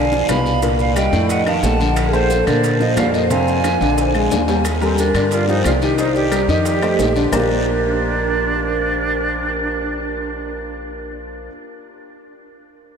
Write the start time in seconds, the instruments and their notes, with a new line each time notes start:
Already playing: upright bass B1, vibraphone D5, flute G#5
0.12 upright piano F3 F4, maracas
0.28 upright bass C2, upright piano B2 B3, vibraphone F5, flute B5, high bongo, low bongo, high timbale, low timbale, short guiro, claves, maracas
0.46 high bongo, short guiro, maracas
0.62 upright piano A#2 A#3, high bongo, high timbale, long guiro, maracas
0.79 vibraphone D5, flute F5, high bongo, maracas
0.96 upright piano G3 G4, vibraphone D#5, flute G5, high bongo, high timbale, low timbale, short guiro, claves, maracas
1.12 upright bass F2, upright piano A2 A3, high bongo, short guiro, maracas
1.29 vibraphone D#5, flute F#5, high bongo, high timbale, long guiro, maracas
1.46 upright piano D#3 D#4, vibraphone F5, flute A5, high timbale, claves, maracas
1.63 upright bass A#1, upright piano A3 A4, vibraphone F#5, flute A5, high bongo, low bongo, low timbale, short guiro, maracas
1.80 upright piano D3 D4, high bongo, short guiro, maracas
1.96 high bongo, high timbale, long guiro, claves, maracas
2.07 vibraphone G#4, flute A#4
2.13 upright piano A#3 C5, vibraphone A4, flute C5, high bongo, high timbale, maracas
2.30 high bongo, low timbale, short guiro, maracas
2.47 upright bass A#2, upright piano D3 D4, vibraphone A#4, flute D5, high bongo, high timbale, short guiro, claves, maracas
2.64 high bongo, high timbale, long guiro, maracas
2.80 upright piano F3 F4, vibraphone C5, flute D#5, maracas
2.97 upright bass F2, upright piano A#2 A#3, vibraphone D5, flute F5, high bongo, low bongo, high timbale, low timbale, short guiro, claves, maracas
3.14 vibraphone C5, flute D#5, high bongo, short guiro, maracas
3.30 upright piano C3 C4, vibraphone F5, flute G#5, high bongo, high timbale, long guiro, maracas
3.48 high bongo, maracas
3.64 upright piano F3 F4, high bongo, high timbale, low timbale, short guiro, claves, maracas
3.80 upright bass A#1, upright piano D3 D4, high bongo, short guiro, maracas
3.98 high bongo, high timbale, long guiro, maracas
4.14 upright piano G#3 G#4, claves, maracas
4.31 upright bass D#2, upright piano D4 D5, high bongo, low bongo, low timbale, short guiro, maracas
4.48 upright piano G3 G4, high bongo, low timbale, short guiro, maracas
4.65 high bongo, high timbale, long guiro, claves, maracas
4.81 upright piano G3 G4 A#4, flute C4, vibraphone A4, high bongo, high timbale, maracas
4.98 flute D4, vibraphone A#4, high bongo, low timbale, short guiro, maracas
5.14 upright bass G2, upright piano D3 D4 D5, high bongo, high timbale, short guiro, claves, maracas
5.31 flute F4, vibraphone D5, high bongo, high timbale, long guiro, maracas
5.48 upright piano F3 F4 G4, flute D#4, vibraphone C5, maracas
5.64 upright bass C2, flute F4, vibraphone D5, high bongo, low bongo, high timbale, low timbale, short guiro, claves, maracas
5.82 upright piano D#3 D#4 D#5, flute G4, vibraphone D#5, high bongo, short guiro, maracas
5.98 upright piano D#3 D#4 D#5, flute D#4, vibraphone C5, high bongo, high timbale, long guiro, maracas
6.15 flute G4, vibraphone D5, high bongo, maracas
6.32 upright piano G3 G4 A#4, high bongo, high timbale, low timbale, short guiro, claves, maracas
6.48 upright bass F2, upright piano D#3 D#4 D#5, flute G4, vibraphone D#5, high bongo, short guiro, maracas
6.65 high bongo, high timbale, long guiro, maracas
6.82 upright piano A3 A4 C5, high timbale, claves, maracas
6.99 upright bass A#1, high bongo, low bongo, low timbale, short guiro, maracas
7.16 upright piano D3 D4 D5, high bongo, short guiro, maracas
7.32 upright bass A#1, upright piano A#3 F4 G4 A#4 C5 D5, flute D4, vibraphone A#4, low bongo, low timbale, long guiro, claves, maracas